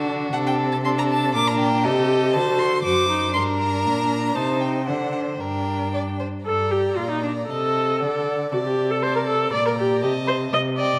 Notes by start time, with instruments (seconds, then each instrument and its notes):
Already playing: cello D3, viola D4, violin F#4
0.33 cello C3, viola D4, violin A4 F#5
0.47 violin G5
0.72 violin A5
0.84 viola D4, violin A4 C6
0.98 violin A#5
1.11 violin A5
1.35 cello A#2, viola D4, violin A#4 D6
1.48 violin A#5
1.60 violin G5
1.84 cello C3, viola G4, violin A4 D#5
2.33 cello D3, viola F#4, violin C5 A5
2.59 violin C6
2.83 cello F#2, viola F#4, violin C5 D6
3.09 viola D#4
3.34 cello G2, viola D4, violin A#4 C6
3.60 violin A#5
3.86 cello A#2
4.36 cello C3, viola D#4, violin C5 A5
4.61 violin G5
4.87 cello D3, viola D4, violin C5 F#5
5.12 violin F#5
5.39 cello G2, viola D4, violin A#4 G5
5.94 violin D5
6.20 violin C5
6.45 cello G2, viola A4, violin D5 A#5
6.71 viola G4
6.96 cello A#2, viola F4
7.11 viola D#4
7.23 viola D4
7.50 cello C3, viola A4, violin D#5 A5
8.00 cello D3, violin D5 F#5
8.51 cello C3, viola F#4, violin D5 A5
8.65 viola G4
8.91 viola A4
9.02 viola C5, violin D5 A5
9.16 viola A#4
9.27 viola A4
9.52 cello A#2, viola D5, violin D5 A#5
9.67 viola A#4
9.79 viola G4
10.02 cello C3, viola G4, violin D#5 A5
10.27 viola C5
10.53 cello C3, viola D#5
10.77 viola D5, violin D#5 G5